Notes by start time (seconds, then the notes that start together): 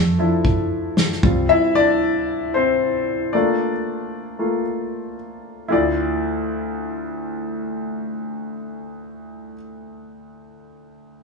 Already playing: F2 A3 A4
0.18 F3 D4 E4
0.45 kick
0.97 snare
1.12 snare
1.23 C2 G3 C4 F4, kick
1.49 E4 E5
1.75 D4 D5
2.54 C4 C5
3.33 A3 A#3 D4 F4 D5
4.39 A3 A#3 F4
5.68 D2 E4 F4 D5